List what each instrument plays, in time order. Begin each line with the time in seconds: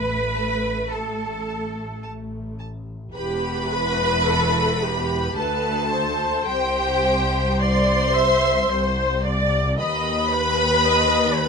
Already playing: double bass section A1, viola section A3, cello section B4, violin section B5
0.35 violin section A5
0.89 double bass section A1, cello section A4, violin section A5
1.48 violin section A5
2.03 double bass section A1, violin section A5
2.60 violin section A5
3.14 double bass section E1, cello section E2, viola section G4, violin section B4 B5
3.70 viola section B4
4.26 viola section A4
4.82 viola section G4
5.36 double bass section D2, cello section D2, violin section A4 A5, viola section B4
5.91 viola section C5
6.46 double bass section C2, cello section C2, violin section G4 G5
7.60 violin section C5 C6, viola section D5
8.14 viola section E5
8.69 cello section C2, double bass section C2, viola section C5
9.24 viola section D5
9.78 cello section D#2, double bass section D#2, violin section B4 B5, viola section D#5
10.32 viola section B4
10.85 viola section D#5
11.39 viola section B4